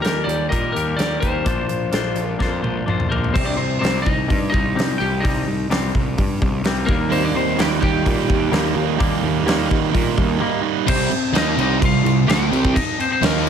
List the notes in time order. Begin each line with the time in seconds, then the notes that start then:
Already playing: D#3
0.02 D#2 G3 A#3 G4 A#4, snare, closed hi-hat
0.06 A#4
0.24 D#2 D5
0.29 closed hi-hat
0.49 A#2 D#3 G3 A#3 G4 A#4 D#5, kick, closed hi-hat
0.72 D#2 G4 A#4
0.76 G3, closed hi-hat
0.97 D#2 G3 A#3 G4 A#4 D5, snare, closed hi-hat
1.20 D#2 G3 G4 A#4 C5, kick, closed hi-hat
1.45 A#1 A#3 D4 F4 C5, kick, closed hi-hat
1.69 A#1, closed hi-hat
1.91 A#1 A#3 D4 F4 C5, snare, closed hi-hat
2.15 A#1, closed hi-hat
2.27 A#4
2.39 F2 A#3 D4 F4 C5, kick, snare
2.62 A#1 D4 F4 C5, high tom
2.86 A#1 A#3 D4 F4 C5, mid tom
3.00 mid tom
3.09 A#1 D4 F4 A#4 C5, floor tom
3.13 A#3
3.24 floor tom
3.33 C2 C3 G3 C4 C5, kick, crash
3.45 D4 D5
3.57 C2 C3 G3 C4 C5
3.79 C2 C3 G3 C4 C5
3.84 snare, open hi-hat
4.02 C3 G3 D#4 D#5
4.06 C2, kick
4.28 G2 C3 G3, kick, open hi-hat
4.50 C3 G3 D#4 D#5
4.54 C2, kick
4.75 C2 C3 G3 C4, open hi-hat
4.80 snare
4.98 C2 C3 G3 G4 G5
5.20 C3 G3 D#4 D#5
5.25 C2 C4, kick, open hi-hat
5.45 C2 C3 G3
5.69 C2 C3 G3 C4, snare, open hi-hat
5.95 C2 C3 G3, kick
6.18 G2 C3 G3, kick, open hi-hat
6.42 C2 C3 G3, kick
6.63 C2 C3 G3 C4, snare, open hi-hat
6.86 D#2 D#3 G3 A#3 A#4, kick
7.09 D#2 D#3 G3 A#3 C4 D#4 C5, open hi-hat
7.23 D4 D5
7.34 D#2 D#3 G3 C4 C5
7.57 D#2 D#3 G3 A#3 D#4 G4, snare, open hi-hat
7.61 G5
7.79 D#2 D#3 G3 A#3 D#4 G4, kick
7.84 G5
8.03 A#2 D#3 G3 A#3 D#4, kick, open hi-hat
8.29 D#2 D#3 G3, kick
8.50 D#2 D#3 G3 A#3 D#4, snare, open hi-hat
8.74 D#2 D#3 G3 A#3 D#4
8.97 D#3 G3 A#3 D#4, kick, open hi-hat
9.01 D#2
9.23 D#2 D#3 G3
9.44 D#2 D#3 G3 A#3 D#4, open hi-hat
9.49 snare
9.67 D#3 G3 A#3 D#4
9.71 D#2, kick
9.91 A#2 D#3 G3 A#3 D#4, kick
9.95 open hi-hat
10.18 D#2 D#3 G3, kick
10.37 D#3 G3 A#3 D#4
10.42 A#3
10.61 D#3 G3 A#3 D#4
10.86 C2 C3 G3 C4 C5, kick, crash
11.11 muted distorted electric guitar stroke, muted picked electric bass stroke, crash
11.33 D#2 D#3 A#3 D#4, snare, crash
11.37 D#5
11.57 C2 C3 G3 C4 D#4, crash
11.61 D#5
11.80 C2 C3 G3 F4, kick, crash
11.85 F5
12.04 C2 C3 G3, crash
12.26 D2 D3 A3 D4 G4 G5, crash
12.31 snare
12.50 C2 C3 G3 C4, crash
12.65 kick
12.74 D#4 D#5, kick, crash
12.99 C4 C5, crash
13.10 C4 C5
13.22 D#2 D#3 A#3 D#4 A#4, snare, crash
13.36 snare